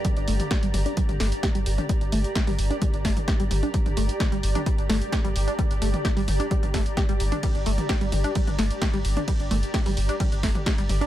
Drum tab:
RD |----------------|----------------|----------------|----------------|
HH |xxoxxxoxxxoxxxox|xxoxxooxxxoxxxox|xxoxxxoxxxoxxxox|xxoxxooxxxoxxxox|
SD |----o-----o-o---|----o-----o-o---|----o-----o-o---|----o-----o-o---|
T2 |o--o--o--o--o--o|--o--o--o--o--o-|-o--o--o--o--o--|o--o--o--o--o--o|
BD |o---o---o---o---|o---o---o-o-o---|o---o---o---o---|o---o---o-o-o---|

RD |x---x---x---x---|x---x---x---x---|
HH |xxoxxxoxxxoxxxox|xxoxxooxxxoxxxox|
SD |----o-----o-o---|----o-----o-o---|
T2 |o--o--o--o--o--o|--o--o--o--o--o-|
BD |o---o---o---o---|o---o---o-o-o---|